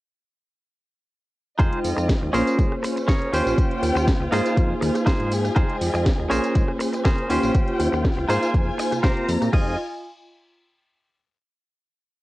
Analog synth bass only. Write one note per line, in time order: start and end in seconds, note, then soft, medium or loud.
1.60 1.68 F2 loud
1.84 1.93 F2 medium
1.97 2.14 F2 medium
2.22 2.30 D#2 loud
2.34 2.43 A#1 medium
2.59 2.68 G#2 medium
3.33 3.42 D#2 medium
3.46 3.54 A#1 medium
3.83 3.91 D#2 medium
3.96 4.12 D#2 medium
4.21 4.29 C#2 loud
4.32 4.41 G#2 medium
4.57 4.74 F2 medium
4.82 4.91 D#2 medium
5.20 5.50 G#2 medium
5.57 5.65 F2 medium
5.81 5.90 F2 medium
5.94 6.10 F2 medium
6.19 6.27 D#2 loud
6.31 6.40 A#1 medium
6.56 6.64 G#2 medium
7.30 7.39 D#2 medium
7.43 7.51 A#1 medium
7.80 7.88 D#2 medium
7.93 8.09 D#2 medium
8.17 8.25 C#2 loud
8.29 8.38 G#2 medium
8.54 8.71 F2 medium
8.92 9.01 C3 soft
9.04 9.12 C3 medium
9.29 9.37 F2 medium
9.42 9.49 A#2 loud
9.53 9.76 F2 medium